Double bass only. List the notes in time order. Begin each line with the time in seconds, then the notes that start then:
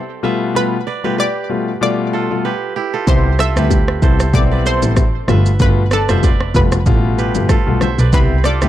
3.07 C2
3.56 D2
4.02 C2
4.34 B1
4.82 A1
5.28 G1
5.60 G1
6.09 F1
6.55 F1
6.86 A1
7.35 G1
7.67 B1
7.98 B1
8.13 C2
8.62 D2